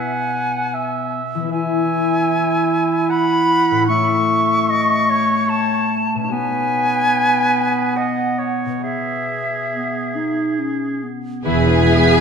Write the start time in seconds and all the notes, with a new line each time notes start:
Already playing: B2 B3 E4 B4 F#5 G#5
0.74 E5
1.35 E3
1.39 B3
1.44 E4
1.48 E4 B4 E5 G#5
3.10 F#5 B5
3.71 A2
3.76 C#4
3.80 E4
3.85 A3 A4 C#6
3.90 E5
4.70 D#5
5.10 C#5
5.49 A5
6.15 B2
6.19 C#4
6.24 D#4
6.28 B3 F#4 B4 G#5
7.96 D#5 F#5
8.39 C#5
8.66 B2
8.71 B3
8.79 G#4 E5
8.84 G#4
9.70 B3
10.15 D#4
10.59 C#4
11.03 B3
11.45 E1 E2 E3 B3 E4 G#4 B4 E5 G#5
11.66 B3 G#4
11.86 E4
12.08 B3 G#4